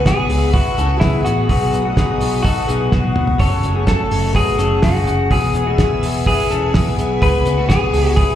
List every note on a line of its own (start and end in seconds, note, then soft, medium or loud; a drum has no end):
0.00 0.12 C#2 loud
0.00 3.37 B4 medium
0.00 1.47 E5 medium
0.00 1.46 G#5 medium
0.00 1.47 C#6 loud
0.05 0.29 E3 medium
0.05 0.29 B3 medium
0.05 0.29 C#4 medium
0.05 0.53 G#4 loud
0.05 0.28 G#4 medium
0.05 kick loud
0.05 snare loud
0.05 hi-hat pedal medium
0.05 open hi-hat medium
0.29 0.59 C#2 loud
0.29 0.52 B3 soft
0.29 0.53 C#4 medium
0.29 0.53 G#4 medium
0.29 hi-hat pedal medium
0.29 open hi-hat medium
0.52 0.77 C#3 medium
0.52 0.77 E3 medium
0.52 0.78 B3 medium
0.52 0.77 C#4 medium
0.52 0.78 E4 medium
0.52 0.99 F#4 loud
0.52 0.76 G#4 medium
0.52 0.78 B4 medium
0.52 kick loud
0.52 hi-hat pedal medium
0.52 open hi-hat medium
0.77 0.97 C#2 loud
0.77 1.01 B3 soft
0.77 1.02 C#4 soft
0.77 1.01 G#4 medium
0.77 1.01 A4 medium
0.77 hi-hat pedal medium
0.77 open hi-hat medium
1.00 1.21 C#2 loud
1.00 1.25 E3 medium
1.00 1.26 B3 medium
1.00 1.25 C#4 medium
1.00 1.24 E4 medium
1.00 kick loud
1.00 snare loud
1.00 hi-hat pedal medium
1.00 open hi-hat medium
1.04 1.23 G#4 medium
1.24 1.45 A1 medium
1.24 1.49 B3 soft
1.24 1.50 C#4 soft
1.24 2.41 F#4 loud
1.24 1.49 G#4 medium
1.24 hi-hat pedal medium
1.24 open hi-hat medium
1.49 1.69 B1 loud
1.49 1.73 B2 medium
1.49 1.73 F#3 medium
1.49 1.73 B3 medium
1.49 1.72 D#4 medium
1.49 1.70 F#4 medium
1.49 1.83 G#4 medium
1.49 3.39 D#5 medium
1.49 5.28 F#5 medium
1.49 3.39 D#6 loud
1.49 kick loud
1.49 hi-hat pedal medium
1.49 open hi-hat medium
1.71 2.03 B1 loud
1.71 1.96 B3 soft
1.71 1.97 D#4 medium
1.71 1.96 F#4 medium
1.71 hi-hat pedal medium
1.71 open hi-hat medium
1.85 1.98 A3 medium
1.85 1.97 F#4 medium
1.96 2.20 F#3 medium
1.96 2.21 B3 medium
1.96 2.20 D#4 medium
1.96 2.19 F#4 medium
1.96 2.42 G#4 medium
1.96 kick loud
1.96 snare loud
1.96 hi-hat pedal medium
1.96 open hi-hat medium
2.20 2.50 B1 medium
2.20 2.44 B3 medium
2.20 2.45 D#4 medium
2.20 2.44 F#4 medium
2.20 hi-hat pedal medium
2.20 open hi-hat medium
2.43 2.68 B2 medium
2.43 2.68 F#3 medium
2.43 2.69 B3 medium
2.43 2.68 D#4 medium
2.43 3.11 F#4 medium
2.43 2.67 F#4 medium
2.43 2.68 A4 medium
2.43 kick loud
2.43 hi-hat pedal medium
2.43 open hi-hat medium
2.68 2.88 B1 loud
2.68 2.92 B3 soft
2.68 2.93 D#4 soft
2.68 2.92 F#4 medium
2.68 2.92 G#4 medium
2.68 hi-hat pedal medium
2.68 open hi-hat medium
2.92 3.12 B1 loud
2.92 3.16 F#3 medium
2.92 3.17 B3 medium
2.92 3.17 D#4 medium
2.92 3.15 F#4 medium
2.92 kick loud
2.92 snare medium
3.04 high tom medium
3.16 3.36 E1 medium
3.16 3.41 B3 soft
3.16 3.41 D#4 medium
3.16 3.40 F#4 medium
3.16 mid tom loud
3.27 floor tom medium
3.39 3.59 F#1 loud
3.39 3.64 F#2 medium
3.39 3.64 C#3 medium
3.39 3.64 F#3 medium
3.39 5.29 A3 loud
3.39 3.63 A3 medium
3.39 3.63 C#4 medium
3.39 3.61 F#4 medium
3.39 3.73 A4 loud
3.39 5.29 C#5 medium
3.39 3.88 C#5 loud
3.39 5.29 C#6 loud
3.39 kick loud
3.39 hi-hat pedal medium
3.39 open hi-hat medium
3.62 3.93 F#1 medium
3.62 3.85 F#3 soft
3.62 3.86 A3 soft
3.62 3.87 C#4 soft
3.62 3.87 F#4 medium
3.62 hi-hat pedal medium
3.62 open hi-hat medium
3.75 3.88 B3 medium
3.75 3.86 G#4 medium
3.86 4.11 F#3 medium
3.86 4.11 A3 medium
3.86 4.10 C#4 medium
3.86 4.09 F#4 medium
3.86 4.32 A4 medium
3.86 4.35 A4 loud
3.86 kick loud
3.86 snare loud
3.86 hi-hat pedal medium
3.86 open hi-hat medium
4.10 4.41 F#1 loud
4.10 4.34 F#3 soft
4.10 4.35 A3 medium
4.10 4.35 C#4 medium
4.10 4.35 F#4 medium
4.10 hi-hat pedal medium
4.10 open hi-hat medium
4.34 4.59 F#2 medium
4.34 4.59 C#3 medium
4.34 4.60 F#3 medium
4.34 4.60 A3 medium
4.34 4.60 C#4 medium
4.34 4.58 F#4 medium
4.34 4.85 G#4 loud
4.34 4.58 B4 medium
4.34 kick loud
4.34 hi-hat pedal medium
4.34 open hi-hat medium
4.58 4.79 F#1 loud
4.58 4.81 F#3 medium
4.58 4.82 A3 soft
4.58 4.83 C#4 medium
4.58 4.83 F#4 medium
4.58 4.83 A4 medium
4.58 hi-hat pedal medium
4.58 open hi-hat medium
4.82 5.03 F#1 loud
4.82 5.07 F#3 medium
4.82 5.07 A3 medium
4.82 5.06 C#4 medium
4.82 5.33 F#4 medium
4.82 5.05 F#4 medium
4.82 5.28 G#4 medium
4.82 kick loud
4.82 snare loud
4.82 hi-hat pedal medium
4.82 open hi-hat medium
5.06 5.26 F#1 loud
5.06 5.30 F#3 soft
5.06 5.31 A3 soft
5.06 5.31 C#4 medium
5.06 5.31 F#4 medium
5.06 hi-hat pedal medium
5.06 open hi-hat medium
5.30 5.50 E1 loud
5.30 5.55 E3 medium
5.30 5.55 B3 medium
5.30 5.55 E4 medium
5.30 6.26 G#4 medium
5.30 5.53 G#4 medium
5.30 8.35 B4 medium
5.30 8.35 E5 medium
5.30 8.35 G#5 medium
5.30 7.21 E6 loud
5.30 kick loud
5.30 hi-hat pedal medium
5.30 open hi-hat medium
5.54 5.84 E1 loud
5.54 5.78 B3 soft
5.54 5.79 E4 medium
5.54 5.79 G#4 medium
5.54 hi-hat pedal medium
5.54 open hi-hat medium
5.67 5.79 A3 medium
5.67 5.79 F#4 medium
5.78 6.03 E3 medium
5.78 6.03 B3 medium
5.78 6.04 E4 medium
5.78 6.02 G#4 medium
5.78 kick loud
5.78 snare loud
5.78 hi-hat pedal medium
5.78 open hi-hat medium
6.03 6.32 E1 medium
6.03 6.27 B3 medium
6.03 6.28 E4 medium
6.03 6.27 G#4 medium
6.03 hi-hat pedal medium
6.03 open hi-hat medium
6.26 6.51 E3 medium
6.26 6.52 B3 medium
6.26 6.52 E4 medium
6.26 6.95 G#4 medium
6.26 6.50 G#4 medium
6.26 6.50 B4 medium
6.26 kick loud
6.26 hi-hat pedal medium
6.26 open hi-hat medium
6.50 6.70 E1 loud
6.50 6.75 C#4 medium
6.50 6.75 E4 medium
6.50 6.75 G#4 medium
6.50 6.74 A4 medium
6.50 hi-hat pedal medium
6.50 open hi-hat medium
6.55 6.75 B3 medium
6.74 6.94 E1 loud
6.74 6.98 E3 medium
6.74 6.99 B3 medium
6.74 6.99 E4 medium
6.74 6.97 G#4 medium
6.74 kick loud
6.74 snare loud
6.74 hi-hat pedal medium
6.74 open hi-hat medium
6.98 7.18 B1 loud
6.98 7.23 B3 medium
6.98 7.23 E4 medium
6.98 7.22 G#4 medium
6.98 hi-hat pedal medium
6.98 open hi-hat medium
7.22 7.42 C#2 loud
7.22 7.47 C#3 medium
7.22 7.47 E3 medium
7.22 7.47 B3 medium
7.22 7.47 C#4 medium
7.22 7.45 G#4 medium
7.22 7.68 B4 loud
7.22 8.35 C#6 loud
7.22 kick loud
7.22 hi-hat pedal medium
7.22 open hi-hat medium
7.45 7.75 C#2 medium
7.45 7.70 B3 medium
7.45 7.71 C#4 medium
7.45 7.70 G#4 medium
7.45 hi-hat pedal medium
7.45 open hi-hat medium
7.58 7.70 A3 medium
7.58 7.70 F#4 medium
7.69 7.94 E3 medium
7.69 7.94 B3 medium
7.69 7.95 C#4 medium
7.69 8.15 G#4 loud
7.69 kick loud
7.69 snare loud
7.69 hi-hat pedal medium
7.69 open hi-hat medium
7.73 7.93 G#4 medium
7.93 8.23 C#2 loud
7.93 8.19 C#4 medium
7.93 8.18 G#4 medium
7.93 hi-hat pedal medium
7.93 open hi-hat medium
7.98 8.18 B3 medium
8.16 8.35 C#3 medium
8.16 8.35 E3 medium
8.16 8.35 B3 medium
8.16 8.35 C#4 medium
8.16 8.35 E4 medium
8.16 8.35 G#4 medium
8.16 8.35 B4 medium
8.16 kick loud
8.16 hi-hat pedal medium
8.16 open hi-hat medium
8.21 8.35 G#4 medium